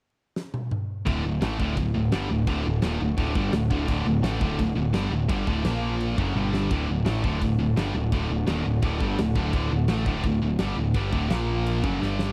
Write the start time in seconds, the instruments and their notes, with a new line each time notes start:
0.36 snare
0.54 high tom
0.71 mid tom
1.05 picked electric bass D1, distorted electric guitar D2 A2 D3, string section D3 A3 D4 F#4, kick, crash
1.24 picked electric bass D1, distorted electric guitar D2 A2
1.42 picked electric bass A1, distorted electric guitar A2 E3 A3, snare, crash
1.58 picked electric bass D1, distorted electric guitar D2 A2 D3, kick
1.77 picked electric bass D1, distorted electric guitar D2 A2, kick, crash
1.94 picked electric bass D1, distorted electric guitar D2 A2
2.12 picked electric bass G1, distorted electric guitar G2 D3 G3, snare, crash
2.30 picked electric bass D1, distorted electric guitar D2 A2
2.47 picked electric bass D1, distorted electric guitar D2 A2 D3, kick, crash
2.64 picked electric bass D1, distorted electric guitar D2 A2
2.82 picked electric bass D#1, distorted electric guitar D#2 A#2 D#3, snare, crash
3.00 picked electric bass D1, distorted electric guitar D2 A2
3.17 picked electric bass D1, distorted electric guitar D2 A2 D3, kick, crash
3.35 picked electric bass G1, distorted electric guitar G2 D3 G3, kick
3.52 picked electric bass D1, distorted electric guitar D2 A2, snare, crash
3.70 picked electric bass D1, distorted electric guitar D2 A2 D3, kick
3.88 picked electric bass D1, distorted electric guitar D2 A2 D3, kick, crash
4.05 picked electric bass D1, distorted electric guitar D2 A2
4.22 picked electric bass A1, distorted electric guitar A2 E3 A3, snare, crash
4.40 picked electric bass D1, distorted electric guitar D2 A2 D3, kick
4.58 picked electric bass D1, distorted electric guitar D2 A2, kick, crash
4.75 picked electric bass D1, distorted electric guitar D2 A2
4.93 picked electric bass G1, distorted electric guitar G2 D3 G3, snare, crash
5.11 picked electric bass D1, distorted electric guitar D2 A2
5.29 picked electric bass G1, distorted electric guitar G2 D3 G3, kick, crash
5.46 picked electric bass D1, distorted electric guitar D2 A2 D3, kick
5.63 picked electric bass A#1, distorted electric guitar A#2 F3 A#3, string section F3 A#3 F4, snare, crash
6.00 crash
6.16 picked electric bass F#1, distorted electric guitar F#2 C#3 F#3, string section D3 A3 D4 F#4, kick
6.35 picked electric bass G1, distorted electric guitar G2 D3 G3, string section G3 G4, high tom
6.54 snare
6.70 picked electric bass D1, distorted electric guitar D2 A2 D3, string section D3 A3 F#4, kick, crash
6.87 picked electric bass D1, distorted electric guitar D2 A2
7.05 picked electric bass A1, distorted electric guitar A2 E3 A3, snare, crash
7.23 picked electric bass D1, distorted electric guitar D2 A2 D3, kick
7.40 picked electric bass D1, distorted electric guitar D2 A2, kick, crash
7.59 picked electric bass D1, distorted electric guitar D2 A2
7.76 picked electric bass G1, distorted electric guitar G2 D3 G3, snare, crash
7.94 picked electric bass D1, distorted electric guitar D2 A2
8.12 picked electric bass D1, distorted electric guitar D2 A2 D3, kick, crash
8.29 picked electric bass D1, distorted electric guitar D2 A2
8.47 picked electric bass D#1, distorted electric guitar D#2 A#2 D#3, snare, crash
8.65 picked electric bass D1, distorted electric guitar D2 A2
8.82 picked electric bass D1, distorted electric guitar D2 A2 D3, kick, crash
9.01 picked electric bass G1, distorted electric guitar G2 D3 G3, kick
9.18 picked electric bass D1, distorted electric guitar D2 A2, snare, crash
9.36 picked electric bass D1, distorted electric guitar D2 A2 D3, kick
9.53 picked electric bass D1, distorted electric guitar D2 A2 D3, kick, crash
9.71 picked electric bass D1, distorted electric guitar D2 A2
9.88 picked electric bass A1, distorted electric guitar A2 E3 A3, snare, crash
10.06 picked electric bass D1, distorted electric guitar D2 A2 D3, kick
10.23 picked electric bass D1, distorted electric guitar D2 A2, kick, crash
10.42 picked electric bass D1, distorted electric guitar D2 A2
10.59 picked electric bass G1, distorted electric guitar G2 D3 G3, snare, crash
10.77 picked electric bass D1, distorted electric guitar D2 A2
10.94 picked electric bass G1, distorted electric guitar G2 D3 G3, kick, crash
11.12 picked electric bass D1, distorted electric guitar D2 A2 D3, kick
11.29 picked electric bass A#1, distorted electric guitar A#2 F3 A#3, string section F3 A#3 F4, snare, crash
11.66 crash
11.84 picked electric bass F#1, distorted electric guitar F#2 C#3 F#3, string section D3 A3 D4 F#4, kick
12.00 picked electric bass G1, distorted electric guitar G2 D3 G3, string section G3 G4, snare
12.19 snare